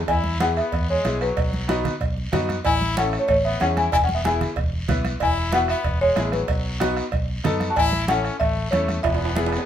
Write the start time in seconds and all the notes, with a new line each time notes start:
0.08 E2 E4 G#5, bombo low, bombo rim, cowbell, long guiro
0.24 high conga
0.40 B3 E4 G#4 F#5, bombo rim, cowbell, high conga, short guiro
0.57 B3 E5, bombo rim, short guiro
0.72 E2, bombo low, bombo rim, cowbell, high conga, long guiro
0.89 G#3 C#5, high conga
1.04 B1 B3 E4 G#4, bombo rim, cowbell, high conga, short guiro
1.21 F#3 B4, bombo rim, short guiro
1.37 B1, bombo low, bombo rim, cowbell, long guiro
1.53 high conga
1.68 B3 D#4 F#4, bombo rim, cowbell, high conga, short guiro
1.85 bombo rim, low conga, short guiro
2.01 B1, bombo low, bombo rim, cowbell, high conga, long guiro
2.17 high conga
2.32 F#2 B3 D#4 F#4, bombo rim, cowbell, high conga, low conga, short guiro
2.49 bombo rim, high conga, short guiro
2.65 A1 E4 G#5, bombo low, bombo rim, cowbell, long guiro
2.81 high conga
2.96 C#4 E4 A4 F#5, bombo rim, cowbell, high conga, short guiro
3.13 bombo rim, short guiro
3.19 A3 C#5
3.28 A1 A3 C#5, bombo low, bombo rim, cowbell, high conga, long guiro
3.45 B3 E5, high conga
3.60 E2 C#4 E4 G#4 F#5, bombo rim, cowbell, high conga, low timbale, short guiro
3.76 E4 G#5, bombo rim, high conga, short guiro
3.92 E1 E4 G#5, bombo low, bombo rim, cowbell, long guiro
4.04 C#4 F#5
4.09 high conga
4.15 B3 E5
4.24 B3 E4 G#4 G#5, bombo rim, cowbell, high conga, short guiro
4.41 bombo rim, low conga, short guiro
4.56 E1, bombo low, bombo rim, cowbell, high conga, long guiro
4.73 high conga
4.88 B1 B3 E4 B4, bombo low, bombo rim, cowbell, high conga, low conga, short guiro
5.05 bombo rim, high conga, short guiro
5.20 E1 E4 G#5, bombo low, bombo rim, cowbell, long guiro
5.52 B3 E4 F#4 F#5, bombo rim, cowbell, high conga, short guiro
5.68 B3 E5, bombo rim, short guiro
5.84 E1, bombo low, bombo rim, cowbell, high conga, long guiro
6.01 G#3 C#5, high conga
6.16 A1 B3 E4 G#4, bombo rim, cowbell, high conga, low timbale, short guiro
6.32 F#3 B4, bombo rim, high conga, short guiro
6.48 B1, bombo low, bombo rim, cowbell, long guiro
6.80 B3 D#4 F#4, bombo rim, cowbell, high conga, short guiro
6.96 bombo rim, short guiro
7.12 B1, bombo low, bombo rim, cowbell, high conga, long guiro
7.29 high conga
7.44 F#2 B3 D#4 A4, bombo rim, cowbell, high conga, low conga, short guiro
7.60 bombo rim, high conga, short guiro
7.70 F#4 A5
7.76 A1 E4 G#5, bombo low, bombo rim, cowbell, long guiro
7.92 high conga
8.07 C#4 E4 A4 F#5, bombo rim, cowbell, high conga, short guiro
8.25 bombo rim, short guiro
8.40 A1 A3 E5, bombo low, bombo rim, cowbell, high conga, long guiro
8.57 high conga
8.71 E2 A3 C#4 E4 A4 C#5, bombo rim, cowbell, high conga, short guiro
8.88 bombo rim, high conga, short guiro
9.03 E1 B3 E5, bombo low, bombo rim, cowbell, high timbale, long guiro
9.15 high timbale
9.25 high timbale
9.35 B3 E4 G#4, bombo rim, cowbell, high conga, short guiro
9.46 high timbale
9.52 bombo rim, short guiro
9.57 low timbale